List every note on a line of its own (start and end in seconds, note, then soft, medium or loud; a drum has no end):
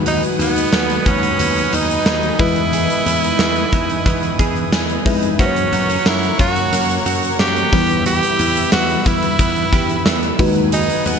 0.00 0.21 D#2 loud
0.00 0.69 D#3 medium
0.00 0.79 G#3 medium
0.00 0.39 B3 medium
0.00 0.79 D#4 medium
0.00 0.79 F#4 medium
0.00 0.80 B4 loud
0.00 5.35 B4 medium
0.00 2.36 F#5 medium
0.00 5.35 G#5 medium
0.00 5.35 D#6 medium
0.06 0.71 F#3 medium
0.06 1.72 D#4 medium
0.06 0.22 D#4 loud
0.06 closed hi-hat medium
0.06 tambourine soft
0.23 closed hi-hat medium
0.39 0.63 D#2 loud
0.39 1.05 B3 medium
0.39 1.03 B3 medium
0.39 closed hi-hat medium
0.56 closed hi-hat medium
0.72 0.97 D#2 loud
0.72 1.38 F#3 medium
0.72 snare medium
0.72 tambourine medium
0.90 closed hi-hat soft
1.06 1.30 D#2 loud
1.06 2.39 B3 medium
1.06 1.76 C#4 medium
1.06 kick medium
1.06 closed hi-hat medium
1.06 tambourine soft
1.23 closed hi-hat medium
1.39 1.64 D#2 loud
1.39 2.05 F#3 medium
1.39 closed hi-hat loud
1.56 closed hi-hat soft
1.73 1.97 D#2 medium
1.73 3.06 D#4 medium
1.73 2.40 D#4 loud
1.73 closed hi-hat medium
1.73 tambourine soft
1.90 closed hi-hat soft
2.06 2.30 D#2 medium
2.06 2.46 F#3 medium
2.06 snare loud
2.06 tambourine medium
2.23 closed hi-hat soft
2.39 2.87 E2 medium
2.39 3.35 E3 medium
2.39 3.46 G#3 medium
2.39 2.72 B3 medium
2.39 3.46 E4 medium
2.39 5.03 E4 loud
2.39 3.46 B4 medium
2.39 3.46 D#5 medium
2.39 kick loud
2.39 open hi-hat medium
2.39 tambourine soft
2.56 closed hi-hat soft
2.72 3.38 B3 medium
2.72 4.38 G#4 medium
2.72 closed hi-hat medium
2.72 tambourine soft
2.90 closed hi-hat medium
3.06 3.30 E2 medium
3.06 3.23 C#4 medium
3.06 closed hi-hat medium
3.06 tambourine soft
3.23 3.72 D#4 medium
3.23 closed hi-hat medium
3.39 3.63 E2 medium
3.39 4.05 B3 medium
3.39 snare loud
3.39 tambourine medium
3.56 closed hi-hat medium
3.73 3.97 E2 loud
3.73 5.05 D#4 medium
3.73 kick medium
3.73 closed hi-hat medium
3.73 tambourine soft
3.90 closed hi-hat medium
4.06 4.30 E2 medium
4.06 4.72 B3 medium
4.06 kick loud
4.06 closed hi-hat loud
4.23 closed hi-hat medium
4.39 4.63 E2 loud
4.39 5.39 G#4 medium
4.39 kick medium
4.39 closed hi-hat medium
4.39 tambourine soft
4.56 closed hi-hat soft
4.72 4.96 E2 loud
4.72 5.46 B3 medium
4.72 5.04 G#5 medium
4.72 snare loud
4.72 tambourine medium
4.90 closed hi-hat soft
5.05 5.30 F2 medium
5.05 5.31 G#3 medium
5.05 5.31 D#4 medium
5.05 5.46 D#4 medium
5.05 5.31 E4 medium
5.05 5.31 B4 loud
5.05 5.37 E5 medium
5.05 kick loud
5.05 open hi-hat medium
5.05 tambourine medium
5.23 closed hi-hat medium
5.38 5.63 F#2 loud
5.38 7.79 F#3 medium
5.38 6.39 A#3 medium
5.38 6.39 C#4 medium
5.38 6.08 C#4 medium
5.38 6.39 F#4 medium
5.38 7.05 F#4 medium
5.38 7.70 A#4 medium
5.38 5.46 C5 medium
5.38 7.70 C#5 medium
5.38 7.70 F#5 medium
5.38 7.70 C#6 medium
5.38 kick loud
5.38 closed hi-hat medium
5.38 tambourine soft
5.46 6.43 C#5 medium
5.56 closed hi-hat medium
5.72 5.96 F#2 medium
5.72 5.89 B3 medium
5.72 closed hi-hat medium
5.72 tambourine soft
5.89 6.38 C#4 medium
5.89 closed hi-hat medium
6.06 6.30 F#2 loud
6.06 6.71 A#3 medium
6.06 6.40 E4 medium
6.06 snare loud
6.06 tambourine medium
6.23 closed hi-hat medium
6.39 6.63 F#2 loud
6.39 7.79 C#4 medium
6.39 7.03 F#4 loud
6.39 kick medium
6.39 closed hi-hat medium
6.39 tambourine soft
6.56 closed hi-hat medium
6.72 6.97 F#2 loud
6.72 7.38 A#3 medium
6.72 closed hi-hat loud
6.72 tambourine soft
6.90 closed hi-hat soft
7.06 7.30 F#2 medium
7.06 7.79 F#4 medium
7.06 closed hi-hat medium
7.06 tambourine soft
7.23 closed hi-hat soft
7.39 7.63 F#2 loud
7.39 7.72 A#3 medium
7.39 8.02 G4 loud
7.39 snare loud
7.39 tambourine medium
7.56 closed hi-hat soft
7.72 8.21 E2 loud
7.72 8.69 E3 medium
7.72 8.79 G3 medium
7.72 8.79 B3 medium
7.72 8.06 B3 medium
7.72 8.79 E4 medium
7.72 10.37 B4 medium
7.72 8.80 B4 medium
7.72 10.37 E5 medium
7.72 10.37 E6 medium
7.72 kick loud
7.72 open hi-hat medium
7.72 tambourine medium
7.89 closed hi-hat medium
8.06 8.72 B3 medium
8.06 8.69 G4 loud
8.06 9.72 G4 medium
8.06 closed hi-hat medium
8.06 tambourine soft
8.23 closed hi-hat medium
8.39 8.63 E2 loud
8.39 9.05 E4 medium
8.39 closed hi-hat medium
8.56 closed hi-hat medium
8.72 8.97 E2 loud
8.72 9.39 B3 medium
8.72 9.08 F#4 loud
8.72 snare loud
8.72 tambourine medium
8.89 closed hi-hat medium
9.06 9.30 E2 medium
9.06 10.46 E4 medium
9.06 10.40 E4 medium
9.06 kick medium
9.06 closed hi-hat medium
9.06 tambourine soft
9.23 closed hi-hat medium
9.39 9.63 E2 loud
9.39 10.05 B3 medium
9.39 kick loud
9.39 closed hi-hat loud
9.39 tambourine soft
9.56 closed hi-hat soft
9.73 9.97 E2 loud
9.73 10.46 G4 medium
9.73 kick medium
9.73 closed hi-hat medium
9.73 tambourine soft
9.89 closed hi-hat soft
10.06 10.30 E2 loud
10.06 11.19 B3 medium
10.06 snare loud
10.06 tambourine medium
10.23 closed hi-hat soft
10.39 10.87 D#2 loud
10.39 11.19 D#3 medium
10.39 10.71 F#3 medium
10.39 11.19 G#3 loud
10.39 11.19 D#4 medium
10.39 11.19 F#4 medium
10.39 11.19 B4 medium
10.39 11.19 B4 loud
10.39 11.19 F#5 medium
10.39 11.19 G#5 medium
10.39 11.19 D#6 medium
10.39 kick loud
10.39 open hi-hat medium
10.39 tambourine soft
10.56 closed hi-hat medium
10.72 11.19 F#3 medium
10.72 11.08 D#4 loud
10.72 11.19 G#4 medium
10.72 closed hi-hat medium
10.72 tambourine soft
10.89 closed hi-hat medium
11.06 11.19 D#2 loud
11.06 11.19 B3 medium
11.06 11.19 D#4 medium
11.06 closed hi-hat medium